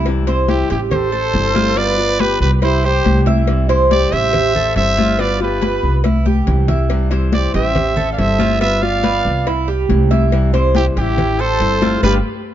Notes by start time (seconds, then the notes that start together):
Already playing: C2
0.06 C3 E3 G3 C4 E4, cowbell, high conga
0.27 E3 G3 C4 E4 C5, cowbell, high conga
0.48 E4 G4, cowbell, high conga
0.70 A1 E4 G4, cowbell, high conga
0.91 A4 C5, muted nylon-string guitar stroke, cowbell, high conga, low conga
1.12 A4, high conga
1.33 G1 E3 G3 C4 E4, cowbell, high conga
1.54 G3 C4 E4 F4, cowbell, high conga
1.76 G3 B3 F4 B4 D5, cowbell, high conga
1.98 B3 F4, high conga
2.19 G4 B4, cowbell, high conga
2.40 C2 G4 B4, high conga
2.61 E4 G4 C5, muted nylon-string guitar stroke, cowbell, high conga
2.84 G4 C5, high conga
3.05 C2 E3 G3 C4 E4, cowbell, high conga
3.26 E3 G3 C4 E4 E5, cowbell, high conga
3.47 C3 E3 G3 C4 E4, cowbell, high conga
3.69 E3 G3 C4 E4 C5, cowbell, high conga
3.91 G4 D5, cowbell, high conga
4.12 A1 G4 C5 E5, cowbell, high conga
4.33 muted nylon-string guitar stroke, cowbell, high conga, low conga
4.56 A4, high conga, low conga
4.76 G1 E3 G3 C4 E4 C5 E5, cowbell, high conga
4.97 G3 C4 E4 F4, cowbell, high conga
5.19 G3 B3 F4 B4 D5, cowbell, high conga
5.40 B3 F4 G4 B4, high conga
5.62 B4, cowbell, high conga
5.83 C2, high conga
6.04 E4, muted nylon-string guitar stroke, cowbell, high conga
6.26 G4, high conga
6.47 C2 E3 G3 C4 E4, cowbell, low conga
6.68 E3 G3 C4 E4 E5, cowbell, low conga
6.89 C3 E3 G3 C4 E4, cowbell, high conga
7.11 E3 G3 C4 E4 C5, cowbell, high conga
7.33 G4 D5, cowbell, high conga
7.54 A1 G4 C5 E5, cowbell, high conga
7.75 muted nylon-string guitar stroke, cowbell, high conga, low conga
7.97 A4, high conga, low conga
8.12 D5 F5
8.17 G1 E3 G3 C4 E4 C5 E5, cowbell, high conga
8.38 G3 C4 E4 F4, cowbell, high conga
8.60 G3 B3 F4 B4 E5, cowbell, high conga
8.82 B3 F4 D5 F5, high conga
9.03 B4, cowbell, high conga
9.25 C2, high conga
9.46 E4, muted nylon-string guitar stroke, cowbell, high conga
9.68 G4, high conga
9.89 C2 E3 G3 C4 E4, cowbell, high conga
10.11 E3 G3 C4 E4 E5, cowbell, high conga
10.32 C3 E3 G3 C4 E4, cowbell, high conga
10.53 E3 G3 C4 E4 C5, cowbell, high conga
10.75 E4 G4, cowbell, high conga
10.96 A1 E4 G4, cowbell, high conga
11.18 muted nylon-string guitar stroke, cowbell, high conga, low conga
11.39 A4 C5, high conga
11.60 G1 E3 G3 C4 E4, cowbell, high conga
11.82 G3 C4 E4 F4, cowbell, high conga
12.03 G1 G3 B3 D4 F4 G4 B4, cowbell, high conga